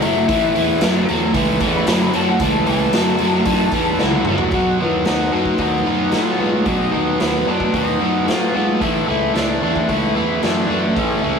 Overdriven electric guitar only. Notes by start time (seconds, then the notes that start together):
0.02 A2 F#3
0.28 A2 E3
0.55 A2 E3
0.81 A2 F#3
1.09 A2 F#3
1.34 A2 E3
1.61 A2 E3
1.87 A2 F#3
2.14 A2 F#3
2.41 A2 E3
2.66 A2 E3
2.93 A2 F#3
3.20 A2 F#3
3.46 A2 E3
3.73 A2 E3
4.00 A2 F#3
4.27 A2 F#3
4.53 B2 F#3 B3
4.79 B2 F#3 B3
5.05 B2 F#3 B3
5.32 B2 F#3 B3
5.59 B2 F#3 B3
5.86 B2 F#3 B3
6.12 B2 F#3 B3
6.39 B2 F#3 B3
6.65 B2 F#3 B3
6.92 B2 F#3 B3
7.20 B2 F#3 B3
7.47 B2 F#3 B3
7.73 B2 F#3 B3
8.00 B2 F#3 B3
8.26 B2 F#3 B3
8.54 B2 F#3 B3
8.80 A2 E3 A3
9.07 A2 E3 A3
9.34 A2 E3 A3
9.62 A2 E3 A3
9.88 A2 E3 A3
10.15 A2 E3 A3
10.42 A2 E3 A3
10.69 A2 E3 A3
10.96 A2 E3 A3
11.22 A2 E3 A3